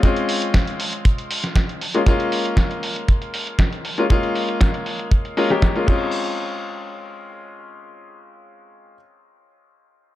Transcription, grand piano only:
\new Staff \with { instrumentName = "Grand piano" } { \time 4/4 \key des \major \tempo 4 = 118 <aes c' des' f'>2.~ <aes c' des' f'>8 r16 <aes bes des' f'>16 | <aes bes des' f'>2.~ <aes bes des' f'>8. <aes bes des' f'>16 | <aes bes des' f'>2~ <aes bes des' f'>8 <aes bes des' f'>16 <aes bes des' g'>8 <aes bes des' f'>16 <aes c' des' f'>8~ | <aes c' des' f'>1~ |
<aes c' des' f'>1 | }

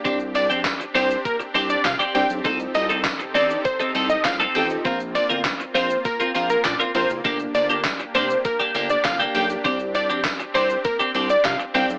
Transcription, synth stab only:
\new Staff \with { instrumentName = "Synth stab" } { \time 4/4 \key c \dorian \tempo 4 = 100 <c' d' g' c'' d''>4. r2 <c' d' g' c'' d''>8 | <c' ees' f' a' c''>4. r2 <c' ees' f' a' c''>8 | <bes c' f' bes' c''>4. r2 <bes c' f' bes' c''>8 | <bes d' g' bes' d''>4. r2 <bes d' g' bes' d''>8 |
<c' d' g' c'' d''>4. r2 <c' d' g' c'' f''>8 | }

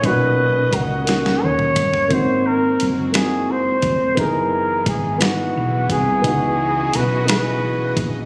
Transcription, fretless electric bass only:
\new Staff \with { instrumentName = "Fretless electric bass" } { \clef bass \time 6/8 \key cis \dorian \tempo 4. = 58 b,,4 cis,4 dis,8 g,,8 | gis,,4 fis,,4. eis,,8 | fis,,4 gis,,4 b,,8 bis,,8 | cis,4 b,,4. ais,,8 | }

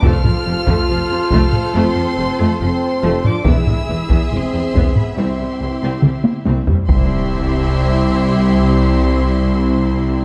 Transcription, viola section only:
\new Staff \with { instrumentName = "Viola section" } { \time 4/4 \key c \major \tempo 4 = 70 << { f'1 | gis'2 e'4.~ e'16 r16 | e'1 | } \\ { a16 f16 c16 a16 f16 c16 a16 r16 a16 f16 c16 a16 f16 r16 a16 f16 | b16 gis16 e16 b16 gis16 e16 b16 r16 c'16 g16 e16 c'16 g16 r16 c'16 g16 | c'1 | } >> }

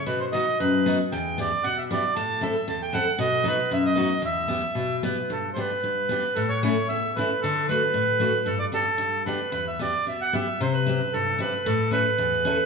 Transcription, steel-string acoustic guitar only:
\new Staff \with { instrumentName = "Steel-string acoustic guitar" } { \time 2/4 \key e \minor \tempo 4 = 114 << { r8 <b dis' fis'>8 r8 <b dis' fis'>8 | r8 <b e' g'>8 r8 <b e' g'>8 | r8 <c' e' a'>8 r8 <c' e' a'>8 | r8 <b dis' fis'>8 r8 <b dis' fis'>8 |
r8 <b e' g'>8 r8 <b e' g'>8 | \key g \major r8 <b d' g'>8 r8 <b d' g'>8 | r8 <a cis' e'>8 r8 <a cis' e'>8 | r8 <a d' fis'>8 r8 <a d' fis'>8 |
r8 <b d' g'>8 r8 <b d' g'>8 | r8 <b e' g'>8 r8 <b e' g'>8 | r8 <c' e' g'>8 r8 <c' e' g'>8 | r8 <cis' e' a'>8 r8 <cis' e' a'>8 | } \\ { b,4 fis,4 | e,4 b,4 | a,4 e,4 | b,4 fis,4 |
e,4 b,4 | g,4 g,4 | a,4 e,4 | d4 a,4 |
g,4 g,4 | e,4 b,4 | c4 g,4 | a,4 e,4 | } >> }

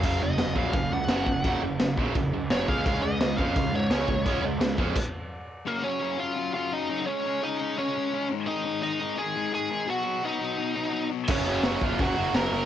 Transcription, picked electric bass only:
\new Staff \with { instrumentName = "Picked electric bass" } { \clef bass \time 4/4 \key des \major \tempo 4 = 171 ges,,8 ges,,8 ges,,8 bes,,8 ges,,8 des,8 ges,,8 ges,,8 | ges,,8 ges,,8 ges,,8 bes,,8 ges,,8 des,8 ges,,8 des,8 | des,8 des,8 des,8 f,8 des,8 aes,8 des,8 des,8 | des,8 des,8 des,8 f,8 r2 |
r1 | r1 | r1 | r1 |
ges,,8 ges,,8 ges,,8 ges,,8 ges,,8 ges,,8 ges,,8 ges,,8 | }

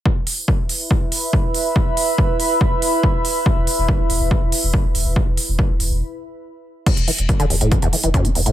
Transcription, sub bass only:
\new Staff \with { instrumentName = "Sub bass" } { \clef bass \time 4/4 \key c \lydian \tempo 4 = 141 r1 | r1 | r16 e,,16 r16 e,,16 r16 e,,16 e,,16 e,,16 r16 e,,16 r16 e,,16 r16 e,,16 e,,16 e,,16 | r16 e,,16 r16 e,,16 r16 e,,16 e,,16 e,,16 r2 |
r16 e,,16 r16 e,,16 r16 e,,16 e,,16 e,,16 r16 e,,16 r16 e,,16 r16 e,,16 e,,16 e,,16 | }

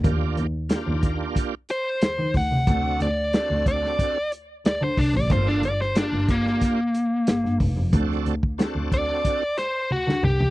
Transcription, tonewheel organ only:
\new Staff \with { instrumentName = "Tonewheel organ" } { \time 4/4 \key d \phrygian \tempo 4 = 91 <bes d' f' g'>8 r8 <bes d' f' g'>4. r4. | <c' d' fis' a'>8 r8 <c' d' fis' a'>4. r4. | <bes d' f' a'>8 r8 <bes d' f' g'>4. r4. | <c' d' fis' a'>8 r8 <c' d' fis' a'>4. r4. | }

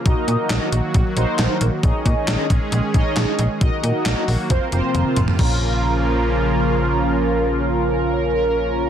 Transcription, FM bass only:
\new Staff \with { instrumentName = "FM bass" } { \clef bass \time 4/4 \key bes \minor \tempo 4 = 135 bes,,16 r16 bes,16 r16 bes,,16 r16 bes,,16 r16 bes,,16 r16 bes,,16 r16 bes,,16 r16 bes,,16 r16 | bes,,16 r16 bes,16 r16 bes,,16 r16 bes,,16 r16 bes,,16 r16 bes,,16 r16 bes,,16 r16 bes,,16 r16 | bes,,16 r16 bes,16 r16 bes,,16 r16 bes,,16 r16 f,,16 r16 f,,16 r16 f,,16 r16 f,,16 r16 | bes,,1~ |
bes,,1 | }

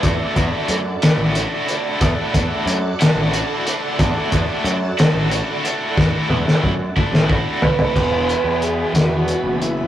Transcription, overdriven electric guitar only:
\new Staff \with { instrumentName = "Overdriven electric guitar" } { \time 6/8 \key d \lydian \tempo 4. = 61 <a d' e' fis'>8 <a d' e' fis'>8 r8 <a d' e' fis'>8 <a d' e' fis'>8 <a d' e' fis'>8 | <a d' e' fis'>8 <a d' e' fis'>8 r8 <a d' e' fis'>8 <a d' e' fis'>8 <a d' e' fis'>8 | <a d' e' fis'>8 <a d' e' fis'>8 r8 <a d' e' fis'>8 <a d' e' fis'>8 <a d' e' fis'>8 | <a d' e' fis'>8 <a d' e' fis'>8 r8 <a d' e' fis'>8 <a d' e' fis'>8 <a d' e' fis'>8 |
<e, b, e b e' gis'>2. | }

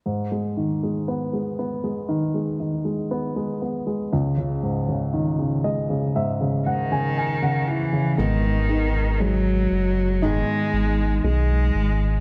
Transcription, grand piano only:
<<
  \new Staff \with { instrumentName = "Grand piano" } { \time 4/4 \key gis \minor \tempo 4 = 59 r1 | r4. dis''8 e''8 fis''16 gis''16 gis''16 fis''8. | r1 | }
  \new Staff \with { instrumentName = "Grand piano" } { \clef bass \time 4/4 \key gis \minor gis,16 gis16 dis16 gis16 b16 gis16 b16 gis16 dis16 gis16 dis16 gis16 b16 gis16 b16 gis16 | cis,16 cis16 gis,16 cis16 dis16 cis16 gis16 cis16 gis,16 cis16 gis,16 cis8 cis16 e16 cis16 | gis8 dis'8 gis4 dis'4 gis4 | }
>>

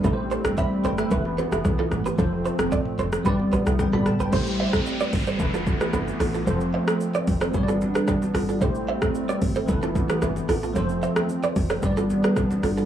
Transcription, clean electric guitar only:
\new Staff \with { instrumentName = "Clean electric guitar" } { \time 4/4 \key a \minor \tempo 4 = 112 <e' a'>16 r16 <a' c''>16 r16 <c'' e''>16 r16 <a' c''>16 r16 <e' b'>16 r16 <g' b'>16 <e' g'>16 r16 <f' a'>16 r16 <g' b'>16 | <f' a'>16 r16 <a' c''>16 r16 <a' d''>16 r16 <a' c''>16 r16 <g' b'>16 r16 <g' b'>16 <e' g'>16 r16 <f' a'>16 r16 <g' b'>16 | <a' c''>16 r16 <c'' e''>16 r8 <b' d''>16 r16 <a' c''>16 r16 <f' a'>16 r16 <g' b'>16 <e' b'>16 r16 <f' a'>16 <f' a'>16 | <a' c''>16 r16 <c'' e''>16 r8 <b' d''>16 r16 <a' c''>16 r16 <f' a'>16 r16 <g' b'>16 <g' b'>16 r16 <f' a'>16 <f' a'>16 |
<a' c''>16 r16 <c'' e''>16 r8 <b' d''>16 r16 <a' c''>16 r16 <f' a'>16 r16 <g' b'>16 <e' b'>16 r16 <f' a'>16 <f' a'>16 | <a' c''>16 r16 <c'' e''>16 r8 <b' d''>16 r16 <a' c''>16 r16 <f' a'>16 r16 <g' b'>16 <g' b'>16 r16 <f' a'>16 <f' a'>16 | }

